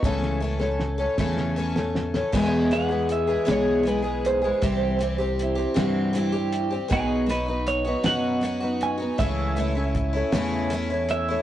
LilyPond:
<<
  \new Staff \with { instrumentName = "Clean electric guitar" } { \time 6/8 \key e \major \tempo 4. = 52 r2. | r8 fis''8 e''8 cis''8 b'8 c''8~ | c''2~ c''8 r8 | gis'8 b'8 cis''8 fis''4 gis''8 |
e''2 r8 e''8 | }
  \new Staff \with { instrumentName = "Electric slide guitar" } { \time 6/8 \key e \major r2. | r2. | r4 e'8 fis'8 e'8. r16 | r2. |
r2. | }
  \new Staff \with { instrumentName = "Tonewheel organ" } { \time 6/8 \key e \major << { r2. | <gis gis'>2. | <g c' c''>2. | <fis b b'>2. |
<a cis' cis''>2. | } \\ { r2. | e'2.~ | e'2. | dis'2. |
e'2. | } >> }
  \new Staff \with { instrumentName = "Twelve-string acoustic guitar" } { \time 6/8 \key e \major <cis e a cis' a'>8 <e a cis' a'>16 <a cis' a'>8 <a cis' a'>16 <cis e a cis' a'>8 <e a cis' a'>16 <a cis' a'>8 <a cis' a'>16 | <e, b, e gis b gis'>8 <e gis b gis'>16 <e gis b gis'>8 <e gis b gis'>16 <e, b, e gis b gis'>8 <e gis b gis'>16 <e gis b gis'>8 <e gis b gis'>16 | <c e g c' g'>8 <e g c' g'>16 <g c' g'>8 <g c' g'>16 <c e g c'>8 <e g c' g'>16 <g c' g'>8 <g c' g'>16 | <b, fis b dis' fis'>8 <fis b dis' fis'>16 <b dis' fis'>8 <b dis' fis'>16 <b, fis b dis' fis'>8 <fis b dis' fis'>16 <b dis' fis'>8 <b dis' fis'>16 |
<cis e a cis' e'>8 <e a cis' e'>16 <a cis' e'>8 <a cis' e'>16 <cis e a cis' e'>8 <e a cis' e'>16 <a cis' e'>8 <a cis' e'>16 | }
  \new Staff \with { instrumentName = "Fingered electric bass" } { \clef bass \time 6/8 \key e \major cis,4. e,4. | e,4. b,,4. | c,4. g,4. | b,,4. fis,4. |
cis,4. e,4. | }
  \new DrumStaff \with { instrumentName = "Drums" } \drummode { \time 6/8 <bd sn>16 sn8 sn16 sn8 <bd sn>16 sn8 sn16 sn16 sn16 | <cymc bd>8 hh8 hh8 <hh sn>8 hh8 hh8 | <hh bd>8 hh8 hh8 <hh sn>8 hh8 hh8 | <hh bd>8 hh8 hh8 <hh sn>8 hh8 hh8 |
<hh bd>8 hh8 <hh bd>8 <hh sn>8 hh8 hh8 | }
>>